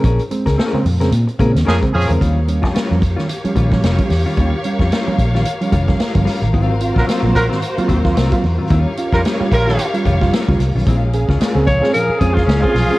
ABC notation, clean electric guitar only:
X:1
M:4/4
L:1/16
Q:"Swing 16ths" 1/4=111
K:Ebmix
V:1 name="Clean electric guitar"
[DAB] z2 [DAB] [DAB] z2 [DAB] z2 [DAB] z [DAB] z2 [DAB] | [G,DF] z2 [G,DF] [G,DF] z2 [G,DF] z2 [G,DF] z [G,DF] z2 [G,DF] | [G,DF] z2 [G,DF] [G,DF] z2 [G,DF] z2 [G,DF] z3 [G,DF] z | [_G,CF] z2 [G,CF] [G,CF] z2 [G,CF] z2 [G,CF] z [G,CF] z2 [G,CF] |
[G,DF] z2 [G,DF] [G,DF] z2 [G,DF] z2 [G,DF] z [G,DF] z2 [G,DF] | [A,DF] z2 [A,DF] [A,DF] z2 [A,DF] z2 [A,DF] z [A,DF] z2 [A,DF] |]